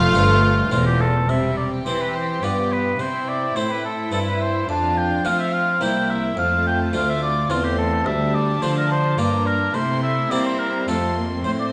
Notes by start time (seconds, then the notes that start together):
Already playing: F1 F2 A3 F4 F5
0.14 G1 G2 A3 C4 F4
0.71 E1 E2 A3 C4 F4
0.86 G4
1.00 A4
1.29 C3 G3 G4 E5 G5
1.57 D5
1.86 E3 C4 E4 C5
2.01 B4
2.15 C5
2.43 G2 B3 F4 D5
2.72 B4
2.99 C3 C4 E4 C5 G5
3.28 D5
3.56 A2 C4 E4 C5
3.71 B4
3.84 A4
4.12 G2 C4 E4 A4
4.27 B4
4.40 C5
4.69 F2 D4 F4 F5 A5
4.97 G5
5.25 F3 A3 C4 F4 F5
5.39 E5
5.53 F5
5.81 C2 A#3 C4 E4 G5
6.09 E5
6.37 F2 A3 F4 F5 A5
6.67 G5
6.93 D2 A3 C4 F4 F5 D6
7.10 E5
7.22 D5
7.50 E2 A3 C4 F4 C6
7.64 G4
7.78 A4
8.06 D2 G3 D4 E5 A5
8.35 D5
8.62 D3 F3 A3 D4 F4 C5
8.77 A#4
8.91 C5
9.18 G2 A#3 D4 F4 G4 D5 A#5
9.46 A#4
9.74 C3 A3 E4 C5 C6
10.03 E5
10.30 G3 A#3 C4 E4 G4 D5 A#5
10.45 C5
10.58 A#4
10.87 F2 A3 C4 F4 A4 C6
11.16 A#3
11.44 A2 A3 C5 C6
11.59 D5